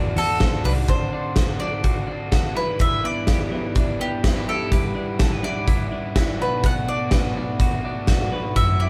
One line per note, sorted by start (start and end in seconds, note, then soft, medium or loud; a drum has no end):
0.00 0.13 E2 medium
0.00 0.16 E2 medium
0.00 0.16 E3 medium
0.00 0.89 E3 medium
0.00 0.16 A3 medium
0.00 0.16 D4 medium
0.00 0.16 F#4 medium
0.00 0.15 C5 medium
0.16 0.36 E2 medium
0.16 0.38 A3 soft
0.16 0.39 D4 soft
0.16 0.40 F#4 medium
0.16 0.62 A4 medium
0.16 0.40 C5 medium
0.16 open hi-hat medium
0.39 0.60 E2 medium
0.39 0.63 A3 medium
0.39 0.63 D4 medium
0.39 0.62 F#4 medium
0.39 0.62 C5 medium
0.39 kick loud
0.39 snare medium
0.39 closed hi-hat medium
0.63 0.84 C2 medium
0.63 0.86 A3 medium
0.63 0.87 D4 medium
0.63 0.86 F#4 medium
0.63 0.72 B4 medium
0.63 0.88 C5 medium
0.63 open hi-hat medium
0.87 1.12 D3 medium
0.87 1.12 C4 medium
0.87 1.10 F#4 medium
0.87 1.10 A4 medium
0.87 1.33 C5 medium
0.87 kick medium
0.87 closed hi-hat medium
1.11 1.36 C4 soft
1.11 1.60 D4 medium
1.11 1.36 F#4 soft
1.11 1.36 A4 soft
1.36 1.60 D3 medium
1.36 1.61 C4 soft
1.36 1.61 F#4 soft
1.36 1.59 A4 medium
1.36 2.61 C5 medium
1.36 kick loud
1.36 snare medium
1.36 closed hi-hat medium
1.60 1.84 C4 soft
1.60 2.07 D4 medium
1.60 1.84 F#4 soft
1.60 1.85 A4 soft
1.60 2.52 D5 medium
1.84 2.08 D3 medium
1.84 2.09 C4 medium
1.84 2.08 F#4 medium
1.84 2.07 A4 medium
1.84 kick medium
1.84 closed hi-hat medium
2.07 2.30 C4 soft
2.07 2.83 D4 soft
2.07 2.31 F#4 soft
2.07 2.32 A4 soft
2.31 2.56 D3 medium
2.31 2.56 C4 medium
2.31 2.55 F#4 medium
2.31 2.54 A4 medium
2.31 kick loud
2.31 snare medium
2.31 closed hi-hat medium
2.55 2.79 E3 soft
2.55 2.79 G3 soft
2.55 2.80 D4 soft
2.55 2.80 E4 soft
2.55 2.81 B4 medium
2.79 3.04 E2 medium
2.79 3.04 B2 medium
2.79 3.04 E3 medium
2.79 3.04 G3 medium
2.79 3.04 D4 medium
2.79 3.03 E4 medium
2.79 3.06 E5 medium
2.79 kick medium
2.79 closed hi-hat medium
3.04 3.26 E3 soft
3.04 3.27 G3 soft
3.04 3.51 B3 medium
3.04 3.28 D4 soft
3.04 3.28 E4 soft
3.04 4.04 D5 medium
3.27 3.52 E3 soft
3.27 3.52 G3 medium
3.27 3.52 D4 medium
3.27 3.51 E4 medium
3.27 4.47 G4 medium
3.27 kick loud
3.27 snare medium
3.27 closed hi-hat medium
3.51 3.75 E3 soft
3.51 3.76 G3 soft
3.51 4.00 B3 medium
3.51 3.75 D4 soft
3.51 3.76 E4 soft
3.75 4.00 E2 medium
3.75 4.00 B2 medium
3.75 4.00 E3 medium
3.75 4.01 G3 medium
3.75 4.00 D4 medium
3.75 3.99 E4 medium
3.75 kick medium
3.75 closed hi-hat medium
4.00 4.22 E3 soft
4.00 4.23 G3 soft
4.00 4.95 B3 soft
4.00 4.23 D4 soft
4.00 4.24 E4 soft
4.00 4.50 G4 medium
4.23 4.48 E3 soft
4.23 4.48 G3 medium
4.23 4.36 C4 soft
4.23 4.47 D4 medium
4.23 4.46 E4 medium
4.23 kick medium
4.23 snare medium
4.23 closed hi-hat medium
4.36 4.77 D4 soft
4.47 4.70 E3 soft
4.47 4.71 G3 soft
4.47 4.72 D4 soft
4.47 4.71 E4 soft
4.47 4.77 G4 medium
4.47 4.73 A4 medium
4.71 4.96 G2 medium
4.71 4.96 D3 medium
4.71 4.96 E3 medium
4.71 4.96 G3 medium
4.71 4.96 B3 medium
4.71 4.95 E4 medium
4.71 5.17 B4 medium
4.71 kick medium
4.71 closed hi-hat medium
4.95 5.18 E3 soft
4.95 5.19 G3 soft
4.95 5.20 B3 soft
4.95 5.43 D4 soft
4.95 5.20 E4 soft
5.19 5.44 E3 soft
5.19 5.44 G3 medium
5.19 5.43 B3 medium
5.19 5.42 E4 medium
5.19 5.32 A4 medium
5.19 kick loud
5.19 snare medium
5.19 closed hi-hat medium
5.32 6.45 B4 soft
5.43 5.67 E3 soft
5.43 5.67 G3 soft
5.43 5.67 B3 soft
5.43 5.92 D4 medium
5.43 5.68 E4 soft
5.43 6.41 D5 medium
5.67 5.92 G2 medium
5.67 5.92 D3 medium
5.67 5.91 E3 medium
5.67 5.91 G3 medium
5.67 5.90 B3 medium
5.67 5.89 E4 medium
5.67 kick medium
5.67 closed hi-hat medium
5.90 6.13 E3 soft
5.90 6.14 G3 soft
5.90 6.15 B3 soft
5.90 8.84 D4 soft
5.90 6.15 E4 soft
6.15 6.39 E3 medium
6.15 6.40 G3 medium
6.15 6.39 B3 medium
6.15 6.39 E4 medium
6.15 kick loud
6.15 snare medium
6.15 closed hi-hat medium
6.39 6.63 B2 medium
6.39 6.63 A3 soft
6.39 6.63 D4 soft
6.39 6.64 F#4 soft
6.39 6.66 B4 medium
6.63 6.88 B2 medium
6.63 6.88 F#3 medium
6.63 6.88 A3 medium
6.63 6.88 D4 medium
6.63 6.86 F#4 medium
6.63 6.90 F#5 medium
6.63 kick medium
6.63 closed hi-hat medium
6.88 7.10 A3 soft
6.88 7.10 D4 soft
6.88 7.11 F#4 soft
6.88 8.29 D5 medium
7.10 7.35 F#3 medium
7.10 7.36 A3 medium
7.10 7.35 D4 medium
7.10 7.34 F#4 medium
7.10 8.31 B4 medium
7.10 kick loud
7.10 snare medium
7.10 closed hi-hat medium
7.35 7.58 A3 soft
7.35 7.59 D4 soft
7.35 7.59 F#4 soft
7.59 7.84 B2 medium
7.59 7.84 F#3 medium
7.59 7.84 A3 medium
7.59 7.84 D4 medium
7.59 7.82 F#4 medium
7.59 kick medium
7.59 closed hi-hat medium
7.84 8.07 A3 soft
7.84 8.08 D4 soft
7.84 8.08 F#4 soft
8.07 8.32 F#3 medium
8.07 8.32 A3 medium
8.07 8.32 D4 medium
8.07 8.30 F#4 medium
8.07 kick loud
8.07 snare medium
8.07 closed hi-hat medium
8.31 8.56 A3 soft
8.31 8.57 D4 soft
8.31 8.56 F#4 medium
8.31 8.61 B4 medium
8.56 8.89 F#2 medium
8.56 8.80 F#3 medium
8.56 8.81 A3 medium
8.56 8.81 C4 medium
8.56 8.80 E4 medium
8.56 8.81 E5 medium
8.56 kick medium
8.56 closed hi-hat medium
8.80 8.89 A3 soft
8.80 8.89 C4 soft
8.80 8.89 E4 soft
8.80 8.89 D5 medium